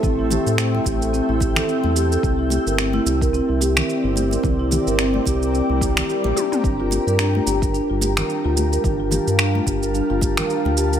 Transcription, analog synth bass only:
X:1
M:4/4
L:1/16
Q:"Swing 16ths" 1/4=109
K:Cmix
V:1 name="Analog synth bass" clef=bass
A,,,2 z A,,2 z A,,,2 z A,,,2 z2 E,,2 z | C,,2 z G,,,2 z C,,2 z C,,2 z2 G,,,2 z | C,,2 z G,,,2 z C,,2 z C,,2 z2 B,,, z2 | G,,,2 z G,,2 z G,,,2 z G,,,2 z2 D,,2 z |
G,,,2 z G,,2 z G,,,2 z G,,,2 z2 D,,2 z |]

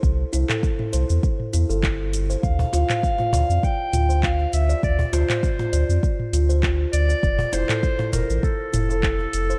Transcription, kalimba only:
X:1
M:4/4
L:1/16
Q:"Swing 16ths" 1/4=100
K:Dm
V:1 name="Kalimba"
c2 E A2 E c z3 E A E z2 c | z2 F c2 F d z3 F c F z2 d- | d2 F c2 F d z3 F c F z2 d | z2 E A2 E c z3 E A E z2 c |]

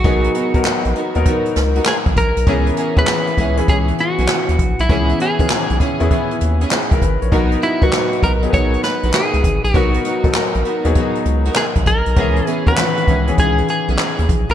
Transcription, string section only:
X:1
M:4/4
L:1/16
Q:"Swing 16ths" 1/4=99
K:B
V:1 name="String section"
[B,DFA] z [B,DFA] z3 [B,DFA] z [B,DFA] z2 [B,DFA] z4 | [B,CEG] z [B,CEG] z3 [B,CEG] z [B,CEG] z2 [B,CEG] z4 | [B,CEG] z [B,CEG] z3 [B,CEG] z [B,CEG] z2 [B,CEG] z4 | [B,DFA] z [B,DFA] z3 [B,DFA] z [B,DFA] z2 [B,DFA] z4 |
[B,DFA] z [B,DFA] z3 [B,DFA] z [B,DFA] z2 [B,DFA] z4 | [B,CEG] z [B,CEG] z3 [B,CEG] z [B,CEG] z2 [B,CEG] z4 |]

